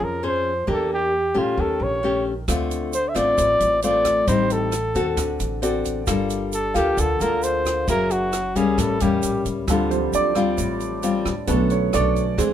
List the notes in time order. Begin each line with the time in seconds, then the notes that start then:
Already playing: F3 C#4 G#4 C5
0.00 F2
0.04 A#4
0.23 C#4 G#4 C5
0.67 E2 E3 A#3 D4 G4
0.71 A4
0.94 G4
1.34 A#2 A3 C#4 F4 G4 A4
1.57 D#2 D#3 A4
1.80 A#1 C#5
2.03 A3 C#4 G4
2.48 D2 D3 A3 C4 F4, kick, cross-stick, closed hi-hat, shaker
2.71 closed hi-hat, shaker
2.93 C5, closed hi-hat, shaker
3.09 E5
3.15 A1 A3 C4 F4 D5, kick, cross-stick, closed hi-hat, shaker
3.37 A1 A2 C5, kick, closed hi-hat, shaker
3.60 A1, closed hi-hat, shaker
3.82 A3 C4 F4 D5, closed hi-hat, shaker
4.05 kick, cross-stick, closed hi-hat, shaker
4.27 A1 A2 G3 C4 D#4 C5, kick, closed hi-hat, shaker
4.50 A4, closed hi-hat, shaker
4.72 cross-stick, closed hi-hat, shaker
4.95 D#2 C4 F#4 A4, kick, closed hi-hat, shaker
5.17 D2 D3, kick, cross-stick, closed hi-hat, shaker
5.40 A1, closed hi-hat, shaker
5.62 C4 F#4 A4 D5, closed hi-hat, shaker
5.85 kick, closed hi-hat, shaker
6.07 G1 G3 A#3 F4 A4, kick, cross-stick, closed hi-hat, shaker
6.30 closed hi-hat, shaker
6.53 A4, closed hi-hat, shaker
6.74 D2 A#3 F4 G4 A4 F5, kick, cross-stick, closed hi-hat, shaker
6.97 D2 D3 A4, kick, closed hi-hat, shaker
7.20 D2 A#3 F4 A4 A#4, closed hi-hat, shaker
7.42 C5, closed hi-hat, shaker
7.65 kick, cross-stick, closed hi-hat, shaker
7.88 F#1 F#3 A#3 E4 G#4 A#4, kick, closed hi-hat, shaker
8.10 F#4, closed hi-hat, shaker
8.33 cross-stick, closed hi-hat, shaker
8.55 C#2 G3 A#3 C#4 G#4, kick, closed hi-hat, shaker
8.78 A1 A2 A4, kick, cross-stick, closed hi-hat, shaker
9.00 E2 G3 A#3 C#4 G4, closed hi-hat, shaker
9.23 A#1, closed hi-hat, shaker
9.45 C#2, kick, closed hi-hat, shaker
9.68 D2 D3 G3 C4 F4 A4, kick, cross-stick, closed hi-hat, shaker
9.90 F3 G3 C4 C5, closed hi-hat, shaker
10.13 D2 D5, closed hi-hat, shaker
10.35 G3 C4 F4, kick, cross-stick, closed hi-hat, shaker
10.57 A1 A2, kick, closed hi-hat, shaker
10.80 closed hi-hat, shaker
11.03 G3 C4 F4, closed hi-hat, shaker
11.25 D2, kick, cross-stick, closed hi-hat, shaker
11.47 B1 D3 A3 B3 C#4 D4 A4 C#5, kick, closed hi-hat, shaker
11.70 C#5, closed hi-hat, shaker
11.93 B1 D4 A4 C#5 D5, cross-stick, closed hi-hat, shaker
12.16 kick, closed hi-hat, shaker
12.38 E2 D3 E3 G#3 C4 D4 G#4 C5, kick, cross-stick, closed hi-hat, shaker